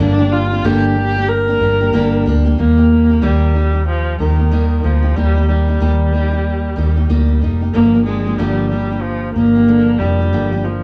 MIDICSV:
0, 0, Header, 1, 4, 480
1, 0, Start_track
1, 0, Key_signature, -3, "major"
1, 0, Tempo, 645856
1, 1914, Time_signature, 4, 2, 24, 8
1, 8051, End_track
2, 0, Start_track
2, 0, Title_t, "Steel-string acoustic guitar"
2, 0, Program_c, 0, 25
2, 0, Note_on_c, 0, 43, 73
2, 0, Note_on_c, 0, 50, 77
2, 0, Note_on_c, 0, 55, 76
2, 0, Note_on_c, 0, 58, 86
2, 4, Note_on_c, 0, 62, 72
2, 4, Note_on_c, 0, 67, 70
2, 126, Note_off_c, 0, 67, 0
2, 134, Note_off_c, 0, 62, 0
2, 135, Note_on_c, 0, 67, 57
2, 138, Note_off_c, 0, 43, 0
2, 139, Note_off_c, 0, 50, 0
2, 140, Note_off_c, 0, 55, 0
2, 141, Note_off_c, 0, 58, 0
2, 143, Note_on_c, 0, 62, 48
2, 149, Note_on_c, 0, 58, 47
2, 153, Note_on_c, 0, 55, 50
2, 370, Note_off_c, 0, 67, 0
2, 377, Note_off_c, 0, 62, 0
2, 379, Note_on_c, 0, 67, 51
2, 381, Note_off_c, 0, 58, 0
2, 386, Note_off_c, 0, 55, 0
2, 386, Note_on_c, 0, 62, 49
2, 390, Note_on_c, 0, 58, 47
2, 397, Note_on_c, 0, 55, 40
2, 472, Note_off_c, 0, 55, 0
2, 474, Note_off_c, 0, 58, 0
2, 475, Note_off_c, 0, 67, 0
2, 476, Note_off_c, 0, 62, 0
2, 476, Note_on_c, 0, 43, 90
2, 478, Note_on_c, 0, 50, 92
2, 481, Note_on_c, 0, 55, 89
2, 483, Note_on_c, 0, 58, 85
2, 484, Note_on_c, 0, 62, 88
2, 488, Note_on_c, 0, 67, 90
2, 703, Note_off_c, 0, 55, 0
2, 711, Note_off_c, 0, 58, 0
2, 712, Note_on_c, 0, 55, 55
2, 715, Note_off_c, 0, 43, 0
2, 716, Note_off_c, 0, 50, 0
2, 716, Note_off_c, 0, 62, 0
2, 720, Note_on_c, 0, 58, 59
2, 721, Note_off_c, 0, 67, 0
2, 725, Note_on_c, 0, 62, 62
2, 730, Note_on_c, 0, 67, 61
2, 854, Note_off_c, 0, 67, 0
2, 857, Note_off_c, 0, 55, 0
2, 861, Note_off_c, 0, 58, 0
2, 861, Note_off_c, 0, 62, 0
2, 863, Note_on_c, 0, 67, 46
2, 870, Note_on_c, 0, 62, 49
2, 875, Note_on_c, 0, 58, 46
2, 881, Note_on_c, 0, 55, 40
2, 1089, Note_off_c, 0, 67, 0
2, 1097, Note_off_c, 0, 62, 0
2, 1098, Note_on_c, 0, 67, 50
2, 1105, Note_off_c, 0, 58, 0
2, 1106, Note_on_c, 0, 62, 46
2, 1110, Note_off_c, 0, 55, 0
2, 1114, Note_on_c, 0, 58, 46
2, 1118, Note_on_c, 0, 55, 44
2, 1185, Note_off_c, 0, 55, 0
2, 1193, Note_off_c, 0, 58, 0
2, 1193, Note_on_c, 0, 55, 54
2, 1194, Note_off_c, 0, 67, 0
2, 1198, Note_off_c, 0, 62, 0
2, 1202, Note_on_c, 0, 58, 60
2, 1207, Note_on_c, 0, 62, 58
2, 1213, Note_on_c, 0, 67, 62
2, 1333, Note_off_c, 0, 67, 0
2, 1337, Note_off_c, 0, 62, 0
2, 1338, Note_off_c, 0, 55, 0
2, 1342, Note_off_c, 0, 58, 0
2, 1342, Note_on_c, 0, 67, 57
2, 1346, Note_on_c, 0, 62, 50
2, 1355, Note_on_c, 0, 58, 44
2, 1360, Note_on_c, 0, 55, 44
2, 1430, Note_off_c, 0, 55, 0
2, 1432, Note_off_c, 0, 58, 0
2, 1433, Note_on_c, 0, 43, 80
2, 1435, Note_off_c, 0, 62, 0
2, 1436, Note_off_c, 0, 67, 0
2, 1436, Note_on_c, 0, 50, 72
2, 1438, Note_on_c, 0, 55, 75
2, 1441, Note_on_c, 0, 58, 76
2, 1444, Note_on_c, 0, 62, 86
2, 1448, Note_on_c, 0, 67, 88
2, 1670, Note_off_c, 0, 55, 0
2, 1674, Note_off_c, 0, 43, 0
2, 1675, Note_off_c, 0, 50, 0
2, 1678, Note_off_c, 0, 58, 0
2, 1679, Note_off_c, 0, 62, 0
2, 1679, Note_on_c, 0, 55, 64
2, 1681, Note_off_c, 0, 67, 0
2, 1686, Note_on_c, 0, 58, 59
2, 1690, Note_on_c, 0, 62, 73
2, 1698, Note_on_c, 0, 67, 80
2, 1808, Note_off_c, 0, 67, 0
2, 1815, Note_off_c, 0, 62, 0
2, 1817, Note_on_c, 0, 67, 62
2, 1820, Note_off_c, 0, 58, 0
2, 1821, Note_off_c, 0, 55, 0
2, 1824, Note_on_c, 0, 62, 52
2, 1829, Note_on_c, 0, 58, 59
2, 1834, Note_on_c, 0, 55, 48
2, 1912, Note_off_c, 0, 55, 0
2, 1914, Note_off_c, 0, 67, 0
2, 1915, Note_off_c, 0, 58, 0
2, 1917, Note_off_c, 0, 62, 0
2, 1917, Note_on_c, 0, 51, 59
2, 1921, Note_on_c, 0, 55, 55
2, 1924, Note_on_c, 0, 58, 67
2, 1925, Note_on_c, 0, 63, 58
2, 1931, Note_on_c, 0, 67, 60
2, 2054, Note_off_c, 0, 67, 0
2, 2060, Note_off_c, 0, 51, 0
2, 2062, Note_off_c, 0, 55, 0
2, 2063, Note_off_c, 0, 58, 0
2, 2063, Note_on_c, 0, 67, 52
2, 2064, Note_off_c, 0, 63, 0
2, 2072, Note_on_c, 0, 63, 44
2, 2079, Note_on_c, 0, 58, 37
2, 2157, Note_off_c, 0, 67, 0
2, 2159, Note_off_c, 0, 58, 0
2, 2161, Note_off_c, 0, 63, 0
2, 2162, Note_on_c, 0, 55, 46
2, 2168, Note_on_c, 0, 58, 43
2, 2175, Note_on_c, 0, 63, 51
2, 2182, Note_on_c, 0, 67, 50
2, 2292, Note_off_c, 0, 67, 0
2, 2300, Note_on_c, 0, 67, 46
2, 2302, Note_off_c, 0, 55, 0
2, 2303, Note_off_c, 0, 63, 0
2, 2306, Note_off_c, 0, 58, 0
2, 2311, Note_on_c, 0, 63, 43
2, 2319, Note_on_c, 0, 58, 37
2, 2391, Note_on_c, 0, 51, 68
2, 2392, Note_off_c, 0, 58, 0
2, 2393, Note_off_c, 0, 63, 0
2, 2395, Note_on_c, 0, 55, 72
2, 2396, Note_off_c, 0, 67, 0
2, 2401, Note_on_c, 0, 58, 85
2, 2402, Note_on_c, 0, 63, 80
2, 2405, Note_on_c, 0, 67, 73
2, 2619, Note_off_c, 0, 55, 0
2, 2628, Note_off_c, 0, 58, 0
2, 2628, Note_on_c, 0, 55, 39
2, 2633, Note_off_c, 0, 51, 0
2, 2634, Note_off_c, 0, 63, 0
2, 2637, Note_on_c, 0, 58, 51
2, 2640, Note_off_c, 0, 67, 0
2, 2643, Note_on_c, 0, 63, 47
2, 2649, Note_on_c, 0, 67, 49
2, 2761, Note_off_c, 0, 67, 0
2, 2770, Note_on_c, 0, 67, 37
2, 2772, Note_off_c, 0, 63, 0
2, 2776, Note_off_c, 0, 55, 0
2, 2780, Note_off_c, 0, 58, 0
2, 2781, Note_on_c, 0, 63, 35
2, 2788, Note_on_c, 0, 58, 33
2, 3108, Note_off_c, 0, 58, 0
2, 3109, Note_on_c, 0, 55, 48
2, 3111, Note_off_c, 0, 67, 0
2, 3112, Note_off_c, 0, 63, 0
2, 3117, Note_on_c, 0, 58, 53
2, 3121, Note_on_c, 0, 63, 51
2, 3128, Note_on_c, 0, 67, 56
2, 3243, Note_off_c, 0, 67, 0
2, 3252, Note_off_c, 0, 63, 0
2, 3252, Note_on_c, 0, 67, 45
2, 3256, Note_off_c, 0, 55, 0
2, 3260, Note_off_c, 0, 58, 0
2, 3261, Note_on_c, 0, 63, 43
2, 3268, Note_on_c, 0, 58, 37
2, 3351, Note_off_c, 0, 58, 0
2, 3352, Note_off_c, 0, 67, 0
2, 3353, Note_on_c, 0, 51, 67
2, 3354, Note_off_c, 0, 63, 0
2, 3355, Note_on_c, 0, 55, 60
2, 3360, Note_on_c, 0, 58, 67
2, 3363, Note_on_c, 0, 63, 74
2, 3365, Note_on_c, 0, 67, 69
2, 3581, Note_off_c, 0, 55, 0
2, 3587, Note_off_c, 0, 58, 0
2, 3590, Note_on_c, 0, 55, 48
2, 3592, Note_off_c, 0, 63, 0
2, 3594, Note_off_c, 0, 51, 0
2, 3596, Note_on_c, 0, 58, 52
2, 3601, Note_off_c, 0, 67, 0
2, 3601, Note_on_c, 0, 63, 55
2, 3609, Note_on_c, 0, 67, 51
2, 3725, Note_off_c, 0, 67, 0
2, 3734, Note_on_c, 0, 67, 47
2, 3735, Note_off_c, 0, 63, 0
2, 3737, Note_off_c, 0, 55, 0
2, 3740, Note_off_c, 0, 58, 0
2, 3744, Note_on_c, 0, 63, 44
2, 3752, Note_on_c, 0, 58, 34
2, 3833, Note_off_c, 0, 67, 0
2, 3835, Note_off_c, 0, 58, 0
2, 3836, Note_off_c, 0, 63, 0
2, 3837, Note_on_c, 0, 51, 59
2, 3839, Note_on_c, 0, 55, 62
2, 3844, Note_on_c, 0, 58, 64
2, 3844, Note_on_c, 0, 63, 69
2, 3850, Note_on_c, 0, 67, 69
2, 3967, Note_off_c, 0, 67, 0
2, 3976, Note_on_c, 0, 67, 49
2, 3979, Note_off_c, 0, 63, 0
2, 3981, Note_off_c, 0, 51, 0
2, 3981, Note_off_c, 0, 55, 0
2, 3984, Note_off_c, 0, 58, 0
2, 3988, Note_on_c, 0, 63, 46
2, 3995, Note_on_c, 0, 58, 41
2, 4072, Note_off_c, 0, 58, 0
2, 4074, Note_off_c, 0, 67, 0
2, 4075, Note_on_c, 0, 55, 44
2, 4080, Note_off_c, 0, 63, 0
2, 4081, Note_on_c, 0, 58, 50
2, 4088, Note_on_c, 0, 63, 54
2, 4091, Note_on_c, 0, 67, 47
2, 4209, Note_off_c, 0, 67, 0
2, 4217, Note_on_c, 0, 67, 44
2, 4219, Note_off_c, 0, 55, 0
2, 4220, Note_off_c, 0, 63, 0
2, 4223, Note_off_c, 0, 58, 0
2, 4229, Note_on_c, 0, 63, 41
2, 4238, Note_on_c, 0, 58, 32
2, 4311, Note_off_c, 0, 58, 0
2, 4312, Note_on_c, 0, 51, 72
2, 4313, Note_off_c, 0, 63, 0
2, 4315, Note_off_c, 0, 67, 0
2, 4316, Note_on_c, 0, 55, 68
2, 4320, Note_on_c, 0, 58, 73
2, 4322, Note_on_c, 0, 63, 75
2, 4324, Note_on_c, 0, 67, 89
2, 4542, Note_off_c, 0, 55, 0
2, 4547, Note_off_c, 0, 58, 0
2, 4551, Note_on_c, 0, 55, 43
2, 4554, Note_off_c, 0, 51, 0
2, 4556, Note_off_c, 0, 63, 0
2, 4556, Note_on_c, 0, 58, 46
2, 4560, Note_off_c, 0, 67, 0
2, 4565, Note_on_c, 0, 63, 54
2, 4570, Note_on_c, 0, 67, 54
2, 4684, Note_off_c, 0, 67, 0
2, 4693, Note_on_c, 0, 67, 50
2, 4694, Note_off_c, 0, 63, 0
2, 4698, Note_off_c, 0, 55, 0
2, 4700, Note_off_c, 0, 58, 0
2, 4703, Note_on_c, 0, 63, 44
2, 4710, Note_on_c, 0, 58, 40
2, 5023, Note_off_c, 0, 58, 0
2, 5023, Note_on_c, 0, 55, 63
2, 5030, Note_off_c, 0, 63, 0
2, 5032, Note_on_c, 0, 58, 55
2, 5033, Note_off_c, 0, 67, 0
2, 5039, Note_on_c, 0, 63, 54
2, 5042, Note_on_c, 0, 67, 68
2, 5163, Note_off_c, 0, 67, 0
2, 5172, Note_on_c, 0, 67, 53
2, 5173, Note_off_c, 0, 63, 0
2, 5174, Note_off_c, 0, 55, 0
2, 5178, Note_off_c, 0, 58, 0
2, 5182, Note_on_c, 0, 63, 52
2, 5191, Note_on_c, 0, 58, 41
2, 5266, Note_off_c, 0, 58, 0
2, 5268, Note_off_c, 0, 63, 0
2, 5272, Note_off_c, 0, 67, 0
2, 5272, Note_on_c, 0, 55, 68
2, 5275, Note_on_c, 0, 58, 75
2, 5277, Note_on_c, 0, 63, 73
2, 5280, Note_on_c, 0, 67, 85
2, 5502, Note_off_c, 0, 55, 0
2, 5509, Note_off_c, 0, 58, 0
2, 5511, Note_on_c, 0, 55, 56
2, 5517, Note_off_c, 0, 63, 0
2, 5518, Note_off_c, 0, 67, 0
2, 5518, Note_on_c, 0, 58, 60
2, 5525, Note_on_c, 0, 63, 61
2, 5531, Note_on_c, 0, 67, 61
2, 5647, Note_off_c, 0, 67, 0
2, 5656, Note_off_c, 0, 63, 0
2, 5656, Note_on_c, 0, 67, 45
2, 5658, Note_off_c, 0, 55, 0
2, 5661, Note_off_c, 0, 58, 0
2, 5665, Note_on_c, 0, 63, 44
2, 5674, Note_on_c, 0, 58, 37
2, 5749, Note_off_c, 0, 58, 0
2, 5749, Note_on_c, 0, 43, 68
2, 5753, Note_on_c, 0, 50, 61
2, 5754, Note_off_c, 0, 67, 0
2, 5757, Note_off_c, 0, 63, 0
2, 5757, Note_on_c, 0, 53, 72
2, 5758, Note_on_c, 0, 58, 76
2, 5760, Note_on_c, 0, 62, 67
2, 5764, Note_on_c, 0, 67, 66
2, 5886, Note_off_c, 0, 67, 0
2, 5894, Note_off_c, 0, 62, 0
2, 5895, Note_on_c, 0, 67, 42
2, 5897, Note_off_c, 0, 43, 0
2, 5899, Note_off_c, 0, 50, 0
2, 5900, Note_off_c, 0, 58, 0
2, 5901, Note_off_c, 0, 53, 0
2, 5903, Note_on_c, 0, 62, 43
2, 5909, Note_on_c, 0, 58, 47
2, 5917, Note_on_c, 0, 53, 35
2, 5981, Note_off_c, 0, 53, 0
2, 5987, Note_off_c, 0, 58, 0
2, 5990, Note_on_c, 0, 53, 52
2, 5994, Note_off_c, 0, 67, 0
2, 5996, Note_off_c, 0, 62, 0
2, 5996, Note_on_c, 0, 58, 54
2, 6005, Note_on_c, 0, 62, 59
2, 6010, Note_on_c, 0, 67, 55
2, 6127, Note_off_c, 0, 67, 0
2, 6130, Note_off_c, 0, 62, 0
2, 6136, Note_on_c, 0, 67, 39
2, 6137, Note_off_c, 0, 53, 0
2, 6137, Note_off_c, 0, 58, 0
2, 6139, Note_on_c, 0, 62, 42
2, 6146, Note_on_c, 0, 58, 43
2, 6153, Note_on_c, 0, 53, 39
2, 6229, Note_off_c, 0, 53, 0
2, 6230, Note_on_c, 0, 43, 75
2, 6232, Note_off_c, 0, 58, 0
2, 6232, Note_off_c, 0, 62, 0
2, 6234, Note_off_c, 0, 67, 0
2, 6235, Note_on_c, 0, 50, 78
2, 6238, Note_on_c, 0, 53, 75
2, 6240, Note_on_c, 0, 58, 77
2, 6240, Note_on_c, 0, 62, 79
2, 6243, Note_on_c, 0, 67, 85
2, 6465, Note_off_c, 0, 53, 0
2, 6471, Note_off_c, 0, 58, 0
2, 6473, Note_off_c, 0, 43, 0
2, 6474, Note_on_c, 0, 53, 43
2, 6476, Note_off_c, 0, 50, 0
2, 6478, Note_off_c, 0, 62, 0
2, 6480, Note_off_c, 0, 67, 0
2, 6480, Note_on_c, 0, 58, 50
2, 6488, Note_on_c, 0, 62, 51
2, 6492, Note_on_c, 0, 67, 57
2, 6607, Note_off_c, 0, 67, 0
2, 6615, Note_off_c, 0, 62, 0
2, 6616, Note_on_c, 0, 67, 51
2, 6617, Note_off_c, 0, 58, 0
2, 6619, Note_off_c, 0, 53, 0
2, 6624, Note_on_c, 0, 62, 40
2, 6626, Note_on_c, 0, 58, 38
2, 6634, Note_on_c, 0, 53, 37
2, 6943, Note_off_c, 0, 53, 0
2, 6952, Note_off_c, 0, 58, 0
2, 6952, Note_on_c, 0, 53, 51
2, 6954, Note_off_c, 0, 67, 0
2, 6958, Note_off_c, 0, 62, 0
2, 6961, Note_on_c, 0, 58, 57
2, 6968, Note_on_c, 0, 62, 51
2, 6971, Note_on_c, 0, 67, 62
2, 7090, Note_off_c, 0, 67, 0
2, 7098, Note_off_c, 0, 53, 0
2, 7098, Note_off_c, 0, 62, 0
2, 7099, Note_on_c, 0, 67, 51
2, 7102, Note_off_c, 0, 58, 0
2, 7107, Note_on_c, 0, 62, 42
2, 7112, Note_on_c, 0, 58, 41
2, 7116, Note_on_c, 0, 53, 36
2, 7187, Note_off_c, 0, 53, 0
2, 7190, Note_on_c, 0, 43, 63
2, 7191, Note_off_c, 0, 58, 0
2, 7193, Note_off_c, 0, 62, 0
2, 7196, Note_off_c, 0, 67, 0
2, 7196, Note_on_c, 0, 50, 69
2, 7196, Note_on_c, 0, 53, 77
2, 7199, Note_on_c, 0, 58, 69
2, 7202, Note_on_c, 0, 62, 75
2, 7206, Note_on_c, 0, 67, 69
2, 7423, Note_off_c, 0, 53, 0
2, 7430, Note_off_c, 0, 58, 0
2, 7432, Note_on_c, 0, 53, 54
2, 7433, Note_off_c, 0, 43, 0
2, 7435, Note_off_c, 0, 62, 0
2, 7436, Note_off_c, 0, 50, 0
2, 7439, Note_on_c, 0, 58, 51
2, 7441, Note_off_c, 0, 67, 0
2, 7444, Note_on_c, 0, 62, 58
2, 7452, Note_on_c, 0, 67, 53
2, 7573, Note_off_c, 0, 67, 0
2, 7578, Note_off_c, 0, 53, 0
2, 7581, Note_off_c, 0, 62, 0
2, 7582, Note_off_c, 0, 58, 0
2, 7582, Note_on_c, 0, 67, 46
2, 7590, Note_on_c, 0, 62, 44
2, 7594, Note_on_c, 0, 58, 40
2, 7601, Note_on_c, 0, 53, 43
2, 7671, Note_off_c, 0, 53, 0
2, 7673, Note_on_c, 0, 43, 60
2, 7674, Note_off_c, 0, 58, 0
2, 7675, Note_off_c, 0, 62, 0
2, 7677, Note_off_c, 0, 67, 0
2, 7677, Note_on_c, 0, 50, 63
2, 7680, Note_on_c, 0, 53, 68
2, 7683, Note_on_c, 0, 58, 65
2, 7684, Note_on_c, 0, 62, 64
2, 7686, Note_on_c, 0, 67, 72
2, 7810, Note_off_c, 0, 67, 0
2, 7817, Note_off_c, 0, 62, 0
2, 7819, Note_off_c, 0, 43, 0
2, 7819, Note_on_c, 0, 67, 49
2, 7820, Note_off_c, 0, 50, 0
2, 7821, Note_off_c, 0, 58, 0
2, 7822, Note_off_c, 0, 53, 0
2, 7826, Note_on_c, 0, 62, 47
2, 7830, Note_on_c, 0, 58, 42
2, 7836, Note_on_c, 0, 53, 41
2, 7907, Note_off_c, 0, 53, 0
2, 7916, Note_off_c, 0, 58, 0
2, 7916, Note_off_c, 0, 67, 0
2, 7916, Note_on_c, 0, 53, 47
2, 7919, Note_off_c, 0, 62, 0
2, 7925, Note_on_c, 0, 58, 52
2, 7929, Note_on_c, 0, 62, 50
2, 7936, Note_on_c, 0, 67, 49
2, 8051, Note_off_c, 0, 53, 0
2, 8051, Note_off_c, 0, 58, 0
2, 8051, Note_off_c, 0, 62, 0
2, 8051, Note_off_c, 0, 67, 0
2, 8051, End_track
3, 0, Start_track
3, 0, Title_t, "Viola"
3, 0, Program_c, 1, 41
3, 0, Note_on_c, 1, 62, 96
3, 239, Note_on_c, 1, 65, 87
3, 250, Note_off_c, 1, 62, 0
3, 483, Note_on_c, 1, 67, 102
3, 494, Note_off_c, 1, 65, 0
3, 955, Note_on_c, 1, 70, 102
3, 966, Note_off_c, 1, 67, 0
3, 1675, Note_off_c, 1, 70, 0
3, 1929, Note_on_c, 1, 58, 101
3, 2397, Note_on_c, 1, 55, 86
3, 2409, Note_off_c, 1, 58, 0
3, 2876, Note_off_c, 1, 55, 0
3, 2884, Note_on_c, 1, 53, 81
3, 3103, Note_off_c, 1, 53, 0
3, 3120, Note_on_c, 1, 51, 79
3, 3604, Note_on_c, 1, 53, 76
3, 3615, Note_off_c, 1, 51, 0
3, 3834, Note_on_c, 1, 55, 92
3, 3845, Note_off_c, 1, 53, 0
3, 4070, Note_off_c, 1, 55, 0
3, 4074, Note_on_c, 1, 55, 83
3, 5486, Note_off_c, 1, 55, 0
3, 5752, Note_on_c, 1, 58, 101
3, 5977, Note_off_c, 1, 58, 0
3, 5988, Note_on_c, 1, 56, 83
3, 6231, Note_on_c, 1, 55, 88
3, 6242, Note_off_c, 1, 56, 0
3, 6464, Note_off_c, 1, 55, 0
3, 6469, Note_on_c, 1, 55, 75
3, 6704, Note_on_c, 1, 53, 84
3, 6715, Note_off_c, 1, 55, 0
3, 6941, Note_off_c, 1, 53, 0
3, 6945, Note_on_c, 1, 58, 101
3, 7423, Note_on_c, 1, 55, 85
3, 7434, Note_off_c, 1, 58, 0
3, 7907, Note_on_c, 1, 53, 74
3, 7918, Note_off_c, 1, 55, 0
3, 8051, Note_off_c, 1, 53, 0
3, 8051, End_track
4, 0, Start_track
4, 0, Title_t, "Fingered electric bass"
4, 0, Program_c, 2, 33
4, 0, Note_on_c, 2, 31, 89
4, 446, Note_off_c, 2, 31, 0
4, 476, Note_on_c, 2, 31, 99
4, 1165, Note_off_c, 2, 31, 0
4, 1194, Note_on_c, 2, 31, 88
4, 1415, Note_off_c, 2, 31, 0
4, 1438, Note_on_c, 2, 31, 91
4, 1657, Note_off_c, 2, 31, 0
4, 1681, Note_on_c, 2, 38, 83
4, 1899, Note_off_c, 2, 38, 0
4, 1919, Note_on_c, 2, 39, 80
4, 2367, Note_off_c, 2, 39, 0
4, 2402, Note_on_c, 2, 39, 79
4, 3089, Note_off_c, 2, 39, 0
4, 3117, Note_on_c, 2, 39, 84
4, 3567, Note_off_c, 2, 39, 0
4, 3596, Note_on_c, 2, 38, 76
4, 3817, Note_off_c, 2, 38, 0
4, 3835, Note_on_c, 2, 39, 81
4, 4286, Note_off_c, 2, 39, 0
4, 4315, Note_on_c, 2, 39, 73
4, 5006, Note_off_c, 2, 39, 0
4, 5036, Note_on_c, 2, 39, 81
4, 5257, Note_off_c, 2, 39, 0
4, 5276, Note_on_c, 2, 38, 73
4, 5515, Note_on_c, 2, 29, 71
4, 5526, Note_off_c, 2, 38, 0
4, 5736, Note_off_c, 2, 29, 0
4, 5756, Note_on_c, 2, 31, 88
4, 6206, Note_off_c, 2, 31, 0
4, 6237, Note_on_c, 2, 31, 86
4, 6927, Note_off_c, 2, 31, 0
4, 6954, Note_on_c, 2, 31, 87
4, 7405, Note_off_c, 2, 31, 0
4, 7433, Note_on_c, 2, 29, 88
4, 7675, Note_off_c, 2, 29, 0
4, 7675, Note_on_c, 2, 31, 98
4, 8051, Note_off_c, 2, 31, 0
4, 8051, End_track
0, 0, End_of_file